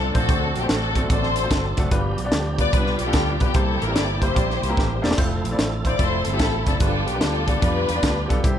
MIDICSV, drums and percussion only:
0, 0, Header, 1, 2, 480
1, 0, Start_track
1, 0, Tempo, 407886
1, 339, Time_signature, 4, 2, 24, 8
1, 10108, End_track
2, 0, Start_track
2, 0, Title_t, "Drums"
2, 174, Note_on_c, 9, 42, 66
2, 177, Note_on_c, 9, 36, 99
2, 292, Note_off_c, 9, 42, 0
2, 294, Note_off_c, 9, 36, 0
2, 339, Note_on_c, 9, 36, 122
2, 339, Note_on_c, 9, 42, 91
2, 457, Note_off_c, 9, 36, 0
2, 457, Note_off_c, 9, 42, 0
2, 654, Note_on_c, 9, 42, 72
2, 771, Note_off_c, 9, 42, 0
2, 814, Note_on_c, 9, 38, 118
2, 816, Note_on_c, 9, 42, 89
2, 932, Note_off_c, 9, 38, 0
2, 933, Note_off_c, 9, 42, 0
2, 1124, Note_on_c, 9, 36, 84
2, 1128, Note_on_c, 9, 42, 78
2, 1241, Note_off_c, 9, 36, 0
2, 1246, Note_off_c, 9, 42, 0
2, 1294, Note_on_c, 9, 36, 112
2, 1295, Note_on_c, 9, 42, 91
2, 1412, Note_off_c, 9, 36, 0
2, 1412, Note_off_c, 9, 42, 0
2, 1447, Note_on_c, 9, 38, 37
2, 1565, Note_off_c, 9, 38, 0
2, 1598, Note_on_c, 9, 42, 98
2, 1716, Note_off_c, 9, 42, 0
2, 1772, Note_on_c, 9, 42, 93
2, 1774, Note_on_c, 9, 36, 90
2, 1780, Note_on_c, 9, 38, 109
2, 1890, Note_off_c, 9, 42, 0
2, 1891, Note_off_c, 9, 36, 0
2, 1898, Note_off_c, 9, 38, 0
2, 2081, Note_on_c, 9, 38, 36
2, 2085, Note_on_c, 9, 42, 76
2, 2092, Note_on_c, 9, 36, 94
2, 2199, Note_off_c, 9, 38, 0
2, 2203, Note_off_c, 9, 42, 0
2, 2210, Note_off_c, 9, 36, 0
2, 2252, Note_on_c, 9, 42, 91
2, 2253, Note_on_c, 9, 36, 118
2, 2370, Note_off_c, 9, 42, 0
2, 2371, Note_off_c, 9, 36, 0
2, 2565, Note_on_c, 9, 42, 66
2, 2683, Note_off_c, 9, 42, 0
2, 2727, Note_on_c, 9, 38, 110
2, 2728, Note_on_c, 9, 42, 90
2, 2844, Note_off_c, 9, 38, 0
2, 2846, Note_off_c, 9, 42, 0
2, 3042, Note_on_c, 9, 36, 82
2, 3043, Note_on_c, 9, 42, 76
2, 3159, Note_off_c, 9, 36, 0
2, 3161, Note_off_c, 9, 42, 0
2, 3213, Note_on_c, 9, 36, 106
2, 3215, Note_on_c, 9, 42, 90
2, 3331, Note_off_c, 9, 36, 0
2, 3332, Note_off_c, 9, 42, 0
2, 3370, Note_on_c, 9, 38, 36
2, 3488, Note_off_c, 9, 38, 0
2, 3517, Note_on_c, 9, 42, 90
2, 3635, Note_off_c, 9, 42, 0
2, 3684, Note_on_c, 9, 42, 103
2, 3690, Note_on_c, 9, 36, 100
2, 3692, Note_on_c, 9, 38, 107
2, 3801, Note_off_c, 9, 42, 0
2, 3807, Note_off_c, 9, 36, 0
2, 3810, Note_off_c, 9, 38, 0
2, 4005, Note_on_c, 9, 42, 72
2, 4011, Note_on_c, 9, 36, 92
2, 4122, Note_off_c, 9, 42, 0
2, 4129, Note_off_c, 9, 36, 0
2, 4169, Note_on_c, 9, 42, 97
2, 4174, Note_on_c, 9, 36, 119
2, 4286, Note_off_c, 9, 42, 0
2, 4291, Note_off_c, 9, 36, 0
2, 4492, Note_on_c, 9, 42, 72
2, 4610, Note_off_c, 9, 42, 0
2, 4655, Note_on_c, 9, 38, 112
2, 4657, Note_on_c, 9, 42, 88
2, 4773, Note_off_c, 9, 38, 0
2, 4775, Note_off_c, 9, 42, 0
2, 4962, Note_on_c, 9, 36, 81
2, 4970, Note_on_c, 9, 42, 75
2, 5080, Note_off_c, 9, 36, 0
2, 5088, Note_off_c, 9, 42, 0
2, 5135, Note_on_c, 9, 36, 99
2, 5136, Note_on_c, 9, 42, 89
2, 5253, Note_off_c, 9, 36, 0
2, 5253, Note_off_c, 9, 42, 0
2, 5298, Note_on_c, 9, 38, 35
2, 5416, Note_off_c, 9, 38, 0
2, 5453, Note_on_c, 9, 42, 89
2, 5571, Note_off_c, 9, 42, 0
2, 5618, Note_on_c, 9, 36, 92
2, 5633, Note_on_c, 9, 38, 61
2, 5735, Note_off_c, 9, 36, 0
2, 5751, Note_off_c, 9, 38, 0
2, 5929, Note_on_c, 9, 38, 89
2, 6015, Note_off_c, 9, 38, 0
2, 6015, Note_on_c, 9, 38, 91
2, 6096, Note_on_c, 9, 36, 127
2, 6098, Note_on_c, 9, 55, 84
2, 6132, Note_off_c, 9, 38, 0
2, 6214, Note_off_c, 9, 36, 0
2, 6215, Note_off_c, 9, 55, 0
2, 6415, Note_on_c, 9, 42, 74
2, 6533, Note_off_c, 9, 42, 0
2, 6576, Note_on_c, 9, 38, 125
2, 6578, Note_on_c, 9, 42, 97
2, 6694, Note_off_c, 9, 38, 0
2, 6696, Note_off_c, 9, 42, 0
2, 6882, Note_on_c, 9, 36, 76
2, 6885, Note_on_c, 9, 42, 78
2, 6999, Note_off_c, 9, 36, 0
2, 7003, Note_off_c, 9, 42, 0
2, 7051, Note_on_c, 9, 36, 106
2, 7051, Note_on_c, 9, 42, 83
2, 7168, Note_off_c, 9, 42, 0
2, 7169, Note_off_c, 9, 36, 0
2, 7351, Note_on_c, 9, 42, 93
2, 7469, Note_off_c, 9, 42, 0
2, 7523, Note_on_c, 9, 42, 95
2, 7527, Note_on_c, 9, 36, 99
2, 7531, Note_on_c, 9, 38, 108
2, 7641, Note_off_c, 9, 42, 0
2, 7644, Note_off_c, 9, 36, 0
2, 7649, Note_off_c, 9, 38, 0
2, 7838, Note_on_c, 9, 38, 34
2, 7842, Note_on_c, 9, 42, 70
2, 7846, Note_on_c, 9, 36, 100
2, 7955, Note_off_c, 9, 38, 0
2, 7959, Note_off_c, 9, 42, 0
2, 7963, Note_off_c, 9, 36, 0
2, 8004, Note_on_c, 9, 42, 91
2, 8009, Note_on_c, 9, 36, 127
2, 8122, Note_off_c, 9, 42, 0
2, 8126, Note_off_c, 9, 36, 0
2, 8328, Note_on_c, 9, 42, 68
2, 8445, Note_off_c, 9, 42, 0
2, 8483, Note_on_c, 9, 38, 121
2, 8485, Note_on_c, 9, 42, 86
2, 8601, Note_off_c, 9, 38, 0
2, 8603, Note_off_c, 9, 42, 0
2, 8798, Note_on_c, 9, 36, 88
2, 8799, Note_on_c, 9, 42, 78
2, 8916, Note_off_c, 9, 36, 0
2, 8916, Note_off_c, 9, 42, 0
2, 8971, Note_on_c, 9, 42, 86
2, 8972, Note_on_c, 9, 36, 104
2, 9089, Note_off_c, 9, 36, 0
2, 9089, Note_off_c, 9, 42, 0
2, 9281, Note_on_c, 9, 42, 99
2, 9399, Note_off_c, 9, 42, 0
2, 9448, Note_on_c, 9, 42, 99
2, 9449, Note_on_c, 9, 36, 101
2, 9456, Note_on_c, 9, 38, 106
2, 9565, Note_off_c, 9, 42, 0
2, 9567, Note_off_c, 9, 36, 0
2, 9573, Note_off_c, 9, 38, 0
2, 9767, Note_on_c, 9, 38, 32
2, 9771, Note_on_c, 9, 36, 90
2, 9771, Note_on_c, 9, 42, 69
2, 9885, Note_off_c, 9, 38, 0
2, 9888, Note_off_c, 9, 42, 0
2, 9889, Note_off_c, 9, 36, 0
2, 9933, Note_on_c, 9, 36, 121
2, 9937, Note_on_c, 9, 42, 95
2, 10051, Note_off_c, 9, 36, 0
2, 10055, Note_off_c, 9, 42, 0
2, 10108, End_track
0, 0, End_of_file